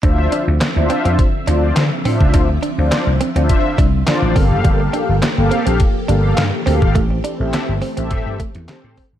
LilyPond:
<<
  \new Staff \with { instrumentName = "Analog polysynth" } { \time 4/4 \key d \minor \tempo 4 = 104 <d' f' c'' e''>8. r8 <d' e' f' c'' e''>8. r8 <d' f' c'' d''>8 r8 <d' f' c'' e''>8~ | <d' f' c'' e''>16 r8 <d' f' c'' d''>8 r8 <d' f' c'' d'' e''>8. r8 <d' f' c'' d''>8 <bes g' a' f''>8~ | <bes g' a' f''>4 r16 <bes g' a' f''>8. r8 <bes g' a' f''>8 r8 <bes g' a' f''>8 | r8. <c' g' a' e''>8 r8 <c' g' a' e''>8. r8 <c' g' a' c''>8 r8 | }
  \new Staff \with { instrumentName = "Clean electric guitar" } { \time 4/4 \key d \minor d'16 r16 d'16 r8. c'16 c'16 r8 d'16 r8. c'16 r16 | d'16 r16 d'16 r8. c'16 c'16 r8 d'16 r8. c'16 r16 | g16 r16 d'16 r8. c'16 c'16 r8 d'16 r8. c'16 r16 | a16 r16 d'16 r8. c'16 c'16 r8 a16 r8. c'16 r16 | }
  \new Staff \with { instrumentName = "String machine" } { \time 4/4 \key d \minor << { e''1~ | e''2.~ e''8 g'8~ | g'1~ | g'1 | } \\ { <d f c'>1~ | <d f c'>2.~ <d f c'>8 <bes a'>8~ | <bes a'>1 | <e a c'>1 | } >> }
  \new Staff \with { instrumentName = "Slap bass" } { \clef bass \time 4/4 \key d \minor d,8 r16 d,16 r16 d,16 r16 f,16 r8 d,8 d16 r16 a,16 cis,16 | d,8 r16 d,16 r16 c,16 r16 d,16 r8 c,8 r16 a,,16 g,,16 fis,,16 | g,,8 r16 g,,16 r16 g,,16 r16 bes,,16 r8 g,,8 g,16 r16 d,16 aes,,16 | a,,8 r16 a,,16 r16 g,,16 r16 a,,16 a,16 g,16 r16 e,16 r16 a,16 r16 aes,,16 | }
  \new DrumStaff \with { instrumentName = "Drums" } \drummode { \time 4/4 <hh bd>8 hh8 <hc hh sn>8 hh16 hh16 <hh bd>8 hh8 <hc hh sn>8 hho16 bd16 | <hh bd>8 hh8 <hc hh sn>8 hh16 hh16 <hh bd>8 <hh bd>8 <hc hh sn>8 <hho bd>8 | <hh bd>8 hh8 <hc hh sn>8 hh16 hh16 <hh bd>8 hh8 <hc hh sn>8 hho16 bd16 | <hh bd>8 hh8 <hc hh sn>8 hho16 hh16 <hh bd>8 <hh bd>16 hh16 <hc hh sn>8 <hho bd>8 | }
>>